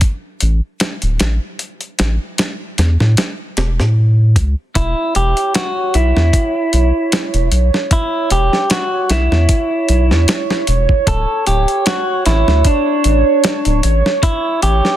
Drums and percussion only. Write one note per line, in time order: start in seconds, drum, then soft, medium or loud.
0.01 kick loud
0.01 closed hi-hat medium
0.41 closed hi-hat medium
0.80 snare loud
0.80 closed hi-hat medium
1.02 closed hi-hat soft
1.20 snare medium
1.20 closed hi-hat medium
1.59 closed hi-hat soft
1.81 closed hi-hat soft
1.99 snare loud
1.99 closed hi-hat medium
2.38 snare loud
2.38 closed hi-hat medium
2.78 snare soft
2.78 closed hi-hat medium
3.00 snare soft
3.17 snare medium
3.17 closed hi-hat medium
3.57 snare medium
3.57 closed hi-hat medium
3.80 snare soft
4.36 kick medium
4.36 closed hi-hat medium
4.75 kick medium
4.75 closed hi-hat medium
5.15 closed hi-hat medium
5.37 closed hi-hat soft
5.55 snare loud
5.55 closed hi-hat medium
5.94 closed hi-hat medium
6.17 snare soft
6.33 kick medium
6.33 closed hi-hat medium
6.73 closed hi-hat medium
7.12 snare loud
7.12 closed hi-hat medium
7.34 closed hi-hat soft
7.52 closed hi-hat medium
7.74 snare soft
7.91 kick medium
7.91 closed hi-hat medium
8.30 closed hi-hat medium
8.53 snare soft
8.70 snare loud
8.70 closed hi-hat medium
9.10 snare soft
9.10 closed hi-hat medium
9.32 snare soft
9.49 kick loud
9.49 closed hi-hat medium
9.89 closed hi-hat medium
10.11 snare soft
10.28 snare loud
10.28 closed hi-hat medium
10.51 snare soft
10.67 closed hi-hat medium
10.89 kick medium
11.07 kick medium
11.07 closed hi-hat medium
11.47 closed hi-hat medium
11.68 closed hi-hat soft
11.86 snare loud
11.86 closed hi-hat medium
12.26 snare soft
12.26 closed hi-hat medium
12.48 snare soft
12.65 kick loud
12.65 closed hi-hat medium
13.04 closed hi-hat medium
13.44 snare loud
13.44 closed hi-hat medium
13.65 closed hi-hat soft
13.83 closed hi-hat medium
14.06 snare soft
14.23 kick medium
14.23 closed hi-hat medium
14.62 closed hi-hat medium
14.85 snare soft